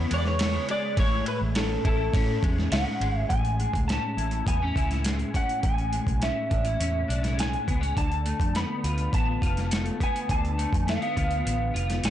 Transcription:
Already playing: C#3 G#3 B3 E4
0.11 E2 G#3 C#5, ride
0.18 D5
0.25 C#5, snare
0.39 A3, snare, ride
0.55 B3
0.69 G#3 D5, ride
0.97 A1 A2 E4 C#5, kick, ride
1.26 B4, ride
1.41 A1
1.55 C#4 A4, snare, ride
1.85 A1 E4 A4, kick, ride
2.13 A2 C#4, kick, ride
2.43 E2 G#3, kick, ride
2.58 snare
2.71 C#2 C#4 F#5, snare, ride
3.01 G#1 G#3, ride
3.18 E5
3.29 A1 A2 G#5, kick, closed hi-hat
3.45 closed hi-hat
3.59 G#3, closed hi-hat
3.74 C#2, kick, closed hi-hat
3.88 C#4 A5, snare, closed hi-hat
4.17 A1 E4, closed hi-hat
4.31 closed hi-hat
4.46 E2 B3 G#5, kick, closed hi-hat
4.62 C#4
4.76 C#2 E4, kick, closed hi-hat
4.91 snare, closed hi-hat
5.04 G#3, snare, closed hi-hat
5.19 closed hi-hat
5.34 C#4 F#5, kick, closed hi-hat
5.49 closed hi-hat
5.62 A1 A2 G#5, kick, closed hi-hat
5.78 closed hi-hat
5.92 G#3, closed hi-hat
6.07 B1, kick, closed hi-hat
6.22 C#4 E5, snare, closed hi-hat
6.50 A1 D4, kick, closed hi-hat
6.65 E4, closed hi-hat
6.80 E2 C#4, closed hi-hat
7.08 B1 D4, closed hi-hat
7.23 E4, snare, closed hi-hat
7.36 G#3 G#5, closed hi-hat
7.40 snare
7.53 closed hi-hat
7.67 C#2 B3, kick, closed hi-hat
7.81 C#4, closed hi-hat
7.96 D2 D3 A5, kick, closed hi-hat
8.12 closed hi-hat
8.26 A3, closed hi-hat
8.40 F2, kick, closed hi-hat
8.55 B3 B5, snare, closed hi-hat
8.84 D2 F4, closed hi-hat
8.98 closed hi-hat
9.13 A1 B3 A5, kick, closed hi-hat
9.42 F1 F4, kick, closed hi-hat
9.57 snare, closed hi-hat
9.71 A3, snare, closed hi-hat
9.86 closed hi-hat
10.00 B3 G#5, kick, closed hi-hat
10.16 closed hi-hat
10.29 D2 D3 A5, kick, closed hi-hat
10.45 closed hi-hat
10.58 A3, closed hi-hat
10.72 F2 G#5, kick, closed hi-hat
10.87 A3 F5, snare, closed hi-hat
11.02 B3, closed hi-hat
11.16 D2 F4, kick, closed hi-hat
11.31 closed hi-hat
11.45 A1 B3, closed hi-hat
11.74 F1 F4, closed hi-hat
11.90 snare, closed hi-hat
12.04 A1 A3 A5, snare, closed hi-hat

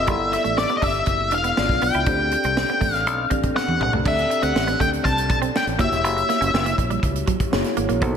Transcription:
Already playing: F4 G#4 E5
0.07 G1 G3 B3 E4 G4 A4 D5, kick, closed hi-hat
0.32 E5, muted clean electric guitar stroke, snare, closed hi-hat
0.44 A1 A3, closed hi-hat
0.57 D5, muted clean electric guitar stroke, snare
0.69 B3, closed hi-hat
0.77 D#5
0.82 G1 D4 E5, kick, open hi-hat
0.94 closed hi-hat
1.06 F#1, muted clean electric guitar stroke, kick, closed hi-hat
1.31 E1 D4 F5, closed hi-hat
1.44 B3, closed hi-hat
1.57 G#1 B3 D4 F4 G#4 D5, muted clean electric guitar stroke, snare
1.69 B1, kick, snare
1.81 B1 B3 G5, open hi-hat
1.94 C#2 E4, closed hi-hat
2.05 D2 C4 D4 G4 A4 C5, kick, closed hi-hat
2.14 D5
2.31 muted clean electric guitar stroke, closed hi-hat
2.44 C2 C4, closed hi-hat
2.57 muted clean electric guitar stroke, snare
2.68 B3, closed hi-hat
2.81 A1 A3, kick, open hi-hat
2.94 F5, snare, closed hi-hat
3.07 B1, closed hi-hat
3.30 A1 C4 D4 G4 A4 D5, kick, closed hi-hat
3.43 kick, closed hi-hat
3.56 B3 F#5, snare
3.68 E2, high tom
3.80 B1 F#5, muted clean electric guitar stroke, mid tom
3.93 C2 A3, floor tom
4.05 D2 C4 D4 G4 A4 D5 E5, kick, crash
4.18 closed hi-hat
4.30 muted clean electric guitar stroke, closed hi-hat
4.42 D2 C4 F#5, closed hi-hat
4.55 A1, muted clean electric guitar stroke, snare
4.67 B3, closed hi-hat
4.80 D2 A3 G5, kick, closed hi-hat
4.93 closed hi-hat
5.04 C2 C4 A5, kick, closed hi-hat
5.18 closed hi-hat
5.29 B1 A5, muted clean electric guitar stroke, kick, closed hi-hat
5.42 C4, closed hi-hat
5.56 G5, snare
5.67 A1, closed hi-hat
5.78 F#1 A#3 E4 F#4 G4 C#5 E5, kick, closed hi-hat
5.91 E1, closed hi-hat
6.04 F#1, closed hi-hat
6.16 muted clean electric guitar stroke, closed hi-hat
6.29 A#3, snare, closed hi-hat
6.41 F#1 C#4, closed hi-hat
6.54 F#1, snare
6.66 A#3, closed hi-hat
6.78 A#1, muted clean electric guitar stroke, kick, closed hi-hat
6.90 G3, closed hi-hat
7.03 C#2, kick, closed hi-hat
7.16 closed hi-hat
7.27 F#3, kick, closed hi-hat
7.40 kick, closed hi-hat
7.52 F#1 A#3 E4 F#4 G#4 C#5, muted clean electric guitar stroke, snare
7.64 snare, closed hi-hat
7.77 G#1 A#3, closed hi-hat
7.89 A#1 A#3, closed hi-hat
8.01 B1 B3 D#4 A4 C5, kick, closed hi-hat

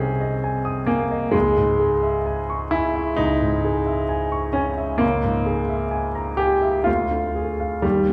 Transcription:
Already playing: C2 C3 C4 C#4 D#5 G#5 D#6
0.00 G#4
0.21 D#5
0.44 G#5
0.65 D#6
0.87 A#3 G#5
1.11 D#5
1.31 C#2 G#3
1.57 G#2
1.79 G#4
2.03 E5
2.26 G#5
2.50 C#6
2.71 E4 G#5
2.95 E5
3.17 C#2 D#4
3.41 G#2
3.65 G#4
3.86 E5
4.09 G#5
4.32 C#6
4.53 C#4 G#5
4.77 E5
4.98 C#2 A#3
5.24 G#2
5.46 G#4
5.69 E5
5.91 G#5
6.15 A#5
6.37 G4 G#5
6.62 E5
6.84 D2 F4
7.11 D3
7.35 G#4
7.60 F5
7.82 D#2 G3
8.09 A#2

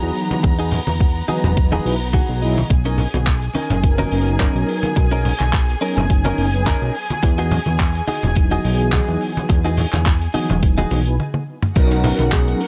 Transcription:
Already playing: E3 F#3 B3 D#4 F#4 G#4 A#5
0.03 E2
0.15 open hi-hat
0.31 high conga
0.43 E2, muted clean electric guitar stroke, kick
0.59 D#4 F#4 G#4
0.71 open hi-hat, low conga
0.87 E2, high conga
1.00 muted clean electric guitar stroke, kick
1.28 E3 F#3 B3 D#4 F#4 G#4 B4, open hi-hat, high conga
1.44 E1, low conga
1.57 kick
1.72 D#4 F#4 G#4, high conga
1.85 B1 F#3 B3 D#4 E4 B4, open hi-hat
2.13 D#4 F#4 G#4 F#5, kick, high conga
2.29 B1
2.42 F#3 B3 D#4 E4 G#4 D#5, open hi-hat
2.58 high conga
2.70 B1 G#4 G#5, muted clean electric guitar stroke, kick, closed hi-hat
2.85 C#4 D#4 A#4, closed hi-hat, high bongo
2.98 open hi-hat, low conga
3.14 B1, closed hi-hat, high conga
3.26 muted clean electric guitar stroke, kick, clap, closed hi-hat
3.42 closed hi-hat
3.55 C#4 D#4 A#4, open hi-hat, high conga
3.70 F#1, closed hi-hat, low conga
3.83 F#3 B3 C#4 D#4 A#4, kick, closed hi-hat
3.98 C#4 D#4 A#4, closed hi-hat, high conga
4.11 F#1 F#3 B3 C#4 D#4 A#4, open hi-hat
4.27 closed hi-hat
4.39 C#4 D#4 A#4, kick, clap, closed hi-hat, high conga
4.55 B1, closed hi-hat
4.69 open hi-hat
4.83 closed hi-hat, high conga
4.96 B1 F#3 B3, muted clean electric guitar stroke, kick, closed hi-hat
5.11 C#4 D#4 A#4, closed hi-hat, high bongo
5.25 open hi-hat, low conga
5.40 B1, clap, closed hi-hat, high conga
5.53 muted clean electric guitar stroke, kick, clap, closed hi-hat
5.69 closed hi-hat
5.81 F#3 B3 C#4 D#4 A#4, open hi-hat
5.96 F#1, closed hi-hat, low conga
6.10 kick, closed hi-hat
6.25 C#4 D#4 A#4, closed hi-hat, high conga
6.38 F#1, open hi-hat
6.53 F#3 B3 C#4 D#4 B4, closed hi-hat
6.66 C#4 D#4 A#4, kick, clap, closed hi-hat, high conga
6.82 B1, closed hi-hat
6.95 open hi-hat
7.10 closed hi-hat, high conga
7.23 E2, muted clean electric guitar stroke, kick, closed hi-hat
7.38 D#4 F#4 G#4, closed hi-hat, high bongo
7.51 open hi-hat, low conga
7.66 E2, closed hi-hat, high conga
7.79 muted clean electric guitar stroke, kick, clap, closed hi-hat
7.95 closed hi-hat
8.08 D#4 F#4 G#4, open hi-hat, high conga
8.23 E1, closed hi-hat, low conga
8.35 F#3 B3 D#4 E4 G#4, kick, closed hi-hat
8.51 D#4 F#4 G#4, closed hi-hat, high conga
8.64 B1 E3 F#3 B3 D#4 G#4, open hi-hat
8.79 closed hi-hat
8.92 D#4 F#4 G#4, kick, clap, closed hi-hat, high conga
9.08 E2, closed hi-hat
9.21 open hi-hat
9.37 closed hi-hat, high conga
9.49 E2, muted clean electric guitar stroke, kick, closed hi-hat
9.65 D#4 F#4 G#4, closed hi-hat, high bongo
9.77 open hi-hat, low conga
9.93 E2, clap, closed hi-hat, high bongo, high conga
10.06 muted clean electric guitar stroke, kick, clap, closed hi-hat
10.21 closed hi-hat
10.33 E3 F#3 B3 D#4 F#4 G#4, open hi-hat, high bongo, high conga
10.49 E1, closed hi-hat, low conga
10.63 kick, closed hi-hat
10.78 D#4 F#4 G#4, closed hi-hat, high conga
10.90 B1, open hi-hat, high bongo
11.06 F#3 B3 D#4 E4 B4, closed hi-hat
11.20 high tom
11.34 high tom
11.62 mid tom
11.75 B1 F#3 B3 C#4 D#4 F#4 A#4 F#5, kick, closed hi-hat, crash
11.91 closed hi-hat, high bongo
12.04 open hi-hat, low conga
12.19 B1, closed hi-hat, high conga
12.32 G#4, kick, clap, closed hi-hat
12.48 closed hi-hat
12.60 A#4, open hi-hat

